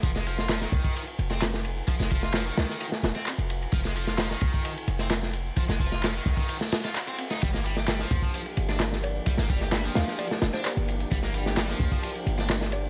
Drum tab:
RD |x-x-x-x-xxx-x-x-|x-x-x-x-x-x-xxxx|x-x-x-x-xxx-x-x-|x-x-x-x-x-x-xxx-|
SH |x-xxx-xxx-xxx-xx|x-xxx-xxx-xxx-xx|x-xxx-xxx-xxx-xx|x-xxx-xxx-xxx-xx|
CP |----x-------x---|----x-------x---|----x-------x---|----x-------x---|
SD |-o-ooo-----ooo--|-o-oo-oo-ooo----|-o-ooo-----ooo--|-o-oo----ooo---o|
BD |o-----oo--------|o-o-------------|o-----oo--------|o-o---oo--------|

RD |x-x-x-x-xxx-x-x-|x-x-x-x-x-x-xxxx|x-x-x-x-xxx-x-x-|
SH |x-xxx-xxx-xxx-xx|x-xxx-xxx-xxx-xx|x-xxx-xxx-xxx-xx|
CP |----x-------x---|----x-------x---|----x-------x---|
SD |-o-ooo-----ooo--|-o-oo-oo-ooo----|-o-ooo-----ooo--|
BD |o-----oo--------|o-o-------------|o-----oo--------|